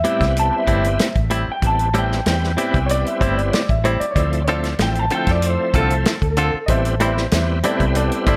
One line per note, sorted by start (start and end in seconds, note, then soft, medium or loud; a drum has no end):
0.00 0.35 E5 medium
0.04 0.24 A2 medium
0.04 1.09 G3 medium
0.04 0.24 G3 medium
0.04 1.09 B3 medium
0.04 1.09 C4 medium
0.04 0.24 C4 medium
0.04 1.09 E4 medium
0.04 0.25 E4 medium
0.04 closed hi-hat medium
0.20 0.49 C2 medium
0.20 kick medium
0.20 snare soft
0.20 closed hi-hat soft
0.37 0.54 A5 medium
0.37 closed hi-hat medium
0.57 1.47 E5 medium
0.67 0.96 G1 medium
0.67 0.87 A2 medium
0.67 0.87 G3 medium
0.67 0.87 C4 medium
0.67 0.88 E4 medium
0.67 kick medium
0.67 closed hi-hat medium
0.84 closed hi-hat soft
0.99 snare medium
0.99 closed hi-hat medium
1.15 1.44 A1 medium
1.15 kick medium
1.15 closed hi-hat soft
1.30 1.50 A2 medium
1.30 1.51 G3 medium
1.30 1.51 C4 medium
1.30 1.51 E4 medium
1.30 closed hi-hat medium
1.52 1.64 G5 medium
1.62 2.19 A1 medium
1.62 1.89 G3 medium
1.62 1.89 B3 medium
1.62 1.89 C4 medium
1.62 1.89 E4 medium
1.62 kick medium
1.62 closed hi-hat medium
1.67 1.96 A5 medium
1.79 closed hi-hat soft
1.94 2.14 A2 medium
1.94 2.21 G3 medium
1.94 2.14 G3 medium
1.94 2.21 B3 medium
1.94 2.21 C4 medium
1.94 2.14 C4 medium
1.94 2.21 E4 medium
1.94 2.14 E4 medium
1.94 closed hi-hat soft
1.99 2.27 G5 medium
2.12 snare soft
2.25 2.55 E2 medium
2.25 2.52 G3 medium
2.25 2.52 B3 medium
2.25 2.52 C4 medium
2.25 2.53 E4 medium
2.25 snare loud
2.25 closed hi-hat medium
2.30 2.89 G5 medium
2.44 snare soft
2.57 2.77 A2 medium
2.57 3.62 G3 medium
2.57 2.78 G3 medium
2.57 3.62 B3 medium
2.57 3.62 C4 medium
2.57 2.78 C4 medium
2.57 3.63 E4 medium
2.57 2.78 E4 medium
2.57 closed hi-hat medium
2.74 3.03 C2 medium
2.74 kick medium
2.74 closed hi-hat soft
2.86 2.90 C#5 medium
2.86 closed hi-hat medium
2.91 3.06 D5 loud
3.06 3.21 E5 medium
3.06 closed hi-hat soft
3.21 3.50 G1 medium
3.21 3.40 A2 medium
3.21 3.41 G3 medium
3.21 3.41 C4 medium
3.21 3.41 E4 loud
3.21 3.36 C5 medium
3.21 kick medium
3.21 closed hi-hat medium
3.38 3.52 D5 medium
3.38 closed hi-hat soft
3.49 3.53 C#5 medium
3.53 3.69 D5 medium
3.53 snare medium
3.53 closed hi-hat medium
3.69 3.98 A1 medium
3.69 3.84 E5 medium
3.69 kick medium
3.69 closed hi-hat soft
3.84 4.04 A2 medium
3.84 4.04 G3 medium
3.84 4.05 C4 medium
3.84 4.05 E4 medium
3.84 4.00 C5 medium
3.84 closed hi-hat medium
4.00 4.14 D5 medium
4.00 muted fingered electric bass stroke soft
4.00 closed hi-hat soft
4.11 4.15 C#5 medium
4.15 4.73 D2 medium
4.15 4.42 F3 medium
4.15 4.43 A3 medium
4.15 4.43 C4 medium
4.15 4.43 E4 medium
4.15 4.46 D5 medium
4.15 kick medium
4.15 closed hi-hat medium
4.33 closed hi-hat soft
4.44 4.67 D3 medium
4.44 4.74 F3 medium
4.44 4.48 C#5 medium
4.44 closed hi-hat medium
4.48 4.74 A3 medium
4.48 4.68 C4 loud
4.48 4.75 C4 medium
4.48 4.75 E4 loud
4.48 4.68 F4 loud
4.48 4.68 A4 loud
4.48 4.79 D5 medium
4.64 snare soft
4.64 closed hi-hat soft
4.79 5.08 A1 medium
4.79 5.05 F3 medium
4.79 5.06 A3 medium
4.79 5.06 C4 medium
4.79 5.06 E4 medium
4.79 4.99 G5 medium
4.79 snare loud
4.79 closed hi-hat medium
4.95 closed hi-hat soft
4.99 5.12 A5 medium
5.10 5.31 D3 medium
5.10 6.15 F3 medium
5.10 6.15 A3 medium
5.10 6.16 C4 medium
5.10 5.31 C4 medium
5.10 6.16 E4 medium
5.10 5.31 F4 medium
5.10 5.31 A4 medium
5.10 closed hi-hat medium
5.15 5.29 G5 medium
5.27 5.56 F2 medium
5.27 kick medium
5.27 snare soft
5.27 closed hi-hat soft
5.31 5.46 D5 medium
5.42 closed hi-hat medium
5.46 5.75 C5 medium
5.74 6.03 C2 medium
5.74 5.94 D3 medium
5.74 5.94 C4 medium
5.74 5.95 F4 medium
5.74 5.95 A4 medium
5.74 6.99 A4 medium
5.74 kick medium
5.74 closed hi-hat medium
5.90 closed hi-hat soft
6.05 snare loud
6.05 closed hi-hat medium
6.22 6.51 D2 medium
6.22 kick medium
6.22 closed hi-hat soft
6.37 6.57 D3 medium
6.37 6.57 C4 medium
6.37 6.58 F4 medium
6.37 6.58 A4 medium
6.37 closed hi-hat medium
6.54 muted fingered electric bass stroke soft
6.66 7.26 A1 medium
6.66 6.95 G3 medium
6.66 6.95 B3 medium
6.66 6.95 C4 medium
6.66 6.95 E4 medium
6.66 6.99 C5 medium
6.66 6.70 D#5 medium
6.66 kick medium
6.66 closed hi-hat medium
6.70 7.01 E5 medium
6.85 closed hi-hat soft
7.00 7.20 A2 medium
7.00 7.27 G3 medium
7.00 7.21 G3 medium
7.00 7.27 B3 medium
7.00 7.27 C4 medium
7.00 7.21 C4 medium
7.00 7.27 E4 loud
7.00 7.21 E4 loud
7.00 7.31 C5 medium
7.00 7.32 E5 medium
7.00 closed hi-hat medium
7.17 snare soft
7.31 7.61 E2 loud
7.31 7.59 G3 medium
7.31 7.59 B3 medium
7.31 7.59 C4 medium
7.31 7.59 E4 medium
7.31 7.63 C5 medium
7.31 7.64 E5 medium
7.31 snare loud
7.31 closed hi-hat medium
7.63 7.84 A2 medium
7.63 8.37 G3 medium
7.63 7.84 G3 medium
7.63 8.37 B3 medium
7.63 8.37 C4 medium
7.63 7.84 C4 medium
7.63 8.37 E4 loud
7.63 7.85 E4 medium
7.63 7.94 A4 medium
7.63 7.95 D5 medium
7.63 closed hi-hat medium
7.80 8.09 C2 medium
7.80 kick medium
7.80 closed hi-hat soft
7.95 8.25 A4 medium
7.95 8.27 D5 medium
7.95 closed hi-hat medium
8.12 closed hi-hat soft
8.26 8.37 G1 medium
8.26 8.37 A2 medium
8.26 8.37 G3 medium
8.26 8.37 C4 loud
8.26 8.37 E4 loud
8.26 8.37 A4 medium
8.26 8.37 D5 medium
8.26 kick medium
8.26 closed hi-hat medium